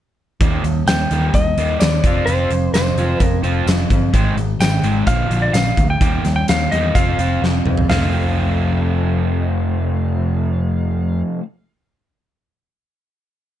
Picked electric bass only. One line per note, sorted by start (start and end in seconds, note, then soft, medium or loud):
0.41 0.58 D#2 medium
0.64 0.81 D#2 medium
0.87 1.04 D#2 medium
1.11 1.28 D#2 medium
1.34 1.51 D#2 medium
1.57 1.75 D#2 medium
1.82 1.98 D#2 medium
2.03 2.21 F1 medium
2.27 2.44 F1 medium
2.50 2.68 F1 medium
2.73 2.91 F1 medium
2.96 3.13 F1 medium
3.20 3.38 F1 medium
3.43 3.61 F1 medium
3.66 3.84 F1 medium
3.91 4.08 G1 medium
4.14 4.31 G#1 medium
4.37 4.54 G#1 medium
4.60 4.78 G#1 medium
4.83 5.01 G#1 medium
5.07 5.24 A#1 medium
5.30 5.48 A#1 medium
5.53 5.71 A#1 medium
5.77 5.95 D2 medium
6.00 6.18 D#2 medium
6.25 6.42 D#2 medium
6.49 6.66 D#2 medium
6.73 6.90 E2 medium
6.95 7.13 F1 medium
7.18 7.36 F1 medium
7.42 7.59 F1 medium
7.65 7.83 F1 medium
7.89 11.22 F1 medium